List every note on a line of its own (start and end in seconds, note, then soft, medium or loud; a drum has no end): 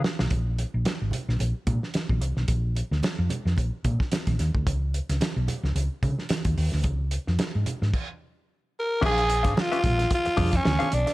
0.04 snare loud
0.19 0.29 B1 medium
0.19 muted clean electric guitar stroke soft
0.19 snare medium
0.31 0.63 A#1 loud
0.31 kick loud
0.31 closed hi-hat medium
0.31 muted conga medium
0.59 closed hi-hat medium
0.59 muted conga soft
0.74 0.83 A#1 medium
0.85 snare loud
0.85 closed hi-hat medium
0.85 high conga medium
1.02 1.10 G#1 medium
1.11 closed hi-hat medium
1.11 low conga medium
1.29 1.37 A#1 medium
1.29 snare soft
1.39 1.52 A#1 medium
1.39 closed hi-hat medium
1.39 muted conga soft
1.67 1.78 A#2 loud
1.67 kick medium
1.67 closed hi-hat medium
1.67 muted conga medium
1.67 low conga medium
1.83 snare soft
1.94 snare loud
1.94 closed hi-hat medium
1.94 high conga medium
2.09 2.21 A#1 medium
2.09 kick medium
2.09 high conga medium
2.21 2.33 C2 medium
2.21 closed hi-hat medium
2.37 2.46 B1 medium
2.37 snare soft
2.37 high conga soft
2.48 2.81 A#1 loud
2.48 kick loud
2.48 closed hi-hat medium
2.48 muted conga medium
2.75 closed hi-hat medium
2.75 muted conga soft
2.91 3.00 D2 medium
2.91 snare soft
3.03 snare loud
3.03 closed hi-hat medium
3.03 high conga medium
3.19 3.28 F2 medium
3.29 closed hi-hat medium
3.29 low conga medium
3.45 3.55 F2 medium
3.45 snare soft
3.57 3.69 A#1 medium
3.57 kick medium
3.57 closed hi-hat medium
3.57 muted conga soft
3.85 3.96 A#2 loud
3.85 kick medium
3.85 closed hi-hat medium
3.85 muted conga medium
3.85 low conga medium
4.00 kick medium
4.00 snare soft
4.12 snare loud
4.12 closed hi-hat medium
4.12 high conga medium
4.27 4.36 A#1 medium
4.27 kick medium
4.27 snare soft
4.27 closed hi-hat medium
4.27 high conga medium
4.39 4.51 D#2 medium
4.39 snare soft
4.39 closed hi-hat medium
4.54 4.64 D2 medium
4.54 kick medium
4.54 high conga soft
4.67 4.99 C#2 medium
4.67 kick loud
4.67 closed hi-hat medium
4.67 muted conga medium
4.94 closed hi-hat medium
5.09 5.18 C#2 medium
5.09 snare soft
5.09 closed hi-hat medium
5.21 snare loud
5.21 closed hi-hat medium
5.21 high conga medium
5.36 5.46 B1 medium
5.48 closed hi-hat medium
5.48 low conga medium
5.63 5.73 C#2 medium
5.63 snare soft
5.75 5.87 C#2 medium
5.75 closed hi-hat medium
5.75 muted conga medium
6.03 6.14 C#3 loud
6.03 kick medium
6.03 closed hi-hat medium
6.03 muted conga soft
6.03 low conga medium
6.19 snare soft
6.29 snare loud
6.29 closed hi-hat medium
6.29 high conga medium
6.45 6.54 D#2 medium
6.45 kick medium
6.45 closed hi-hat medium
6.45 high conga medium
6.57 6.69 D#2 medium
6.57 open hi-hat medium
6.72 6.82 D2 medium
6.72 snare soft
6.72 high conga soft
6.84 7.17 C#2 medium
6.84 kick loud
6.84 closed hi-hat medium
6.84 muted conga medium
7.11 closed hi-hat medium
7.27 7.37 F2 medium
7.27 snare soft
7.39 snare loud
7.39 closed hi-hat medium
7.39 high conga medium
7.55 7.64 G#2 medium
7.66 closed hi-hat medium
7.66 low conga medium
7.82 7.91 G#2 medium
7.82 snare soft
7.94 kick loud
7.94 crash medium
8.79 9.03 A#4 medium
9.01 9.45 A#1 loud
9.01 9.22 D4 medium
9.01 9.23 G#4 medium
9.01 9.23 C5 medium
9.01 9.23 F5 medium
9.01 kick loud
9.01 crash loud
9.01 muted conga medium
9.06 9.52 G#4 loud
9.18 closed hi-hat soft
9.29 muted clean electric guitar stroke soft
9.29 closed hi-hat medium
9.43 9.54 G#1 medium
9.43 9.55 D4 medium
9.43 9.55 G#4 medium
9.43 9.55 C5 medium
9.43 9.55 F5 medium
9.43 kick medium
9.43 snare soft
9.43 closed hi-hat medium
9.52 9.63 G#4 medium
9.56 muted clean electric guitar stroke soft
9.56 snare loud
9.56 high conga medium
9.62 10.13 F4 loud
9.72 9.82 D4 medium
9.72 9.82 G#4 medium
9.72 9.83 C5 medium
9.72 9.83 F5 medium
9.72 closed hi-hat soft
9.84 10.04 A#1 medium
9.84 kick loud
9.84 closed hi-hat medium
9.84 low conga medium
9.98 muted clean electric guitar stroke soft
9.98 snare soft
9.98 closed hi-hat soft
10.11 10.58 F4 loud
10.11 muted clean electric guitar stroke soft
10.11 kick loud
10.11 closed hi-hat loud
10.11 muted conga medium
10.25 muted clean electric guitar stroke soft
10.25 muted fingered electric bass stroke soft
10.25 closed hi-hat soft
10.37 10.58 F2 loud
10.37 10.54 D4 medium
10.37 10.52 G#4 medium
10.37 10.52 C5 medium
10.37 10.52 F5 medium
10.37 kick medium
10.37 open hi-hat medium
10.37 muted conga medium
10.37 low conga medium
10.53 10.96 C#4 loud
10.53 muted clean electric guitar stroke soft
10.53 kick loud
10.53 snare soft
10.53 closed hi-hat medium
10.65 10.77 D2 loud
10.65 muted clean electric guitar stroke soft
10.65 snare loud
10.65 high conga medium
10.79 10.90 D4 medium
10.79 10.90 G#4 medium
10.79 10.91 C5 medium
10.79 10.91 F5 medium
10.79 closed hi-hat soft
10.79 high conga medium
10.92 11.04 B1 medium
10.92 11.14 D4 medium
10.92 closed hi-hat medium
11.07 muted clean electric guitar stroke soft
11.07 snare soft
11.07 closed hi-hat soft